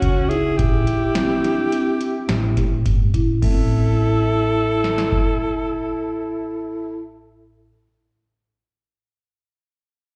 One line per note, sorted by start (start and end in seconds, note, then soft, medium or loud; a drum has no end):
0.00 0.51 C#2 medium
0.00 0.30 C#4 medium
0.00 0.21 F#4 medium
0.00 0.31 F#4 loud
0.00 kick medium
0.00 closed hi-hat medium
0.29 0.54 D#4 medium
0.29 0.58 E4 medium
0.29 0.58 G#4 medium
0.29 closed hi-hat medium
0.57 0.83 A1 medium
0.57 2.85 E4 medium
0.57 2.84 G4 loud
0.57 0.83 G4 medium
0.57 kick loud
0.57 closed hi-hat medium
0.87 1.11 G4 medium
0.87 closed hi-hat medium
1.15 1.39 C4 medium
1.15 snare loud
1.15 closed hi-hat medium
1.44 1.67 D4 medium
1.44 snare soft
1.44 closed hi-hat medium
1.72 1.96 C4 medium
1.72 closed hi-hat medium
2.01 2.47 E4 medium
2.01 closed hi-hat medium
2.29 2.53 A1 medium
2.29 snare loud
2.29 closed hi-hat medium
2.57 2.81 A2 medium
2.57 3.04 G4 medium
2.57 kick medium
2.57 snare soft
2.57 closed hi-hat medium
2.86 3.11 G1 medium
2.86 kick medium
2.86 closed hi-hat medium
3.14 3.39 A1 medium
3.14 3.37 E4 medium
3.14 kick medium
3.14 closed hi-hat medium
3.42 7.71 A1 medium
3.42 7.71 A3 medium
3.42 7.01 E4 medium
3.42 7.01 A4 medium
3.42 kick loud
3.42 crash medium
3.47 7.73 C4 medium
3.51 7.75 E4 medium
3.51 7.77 A4 medium
4.84 snare medium
4.98 snare medium
5.12 kick medium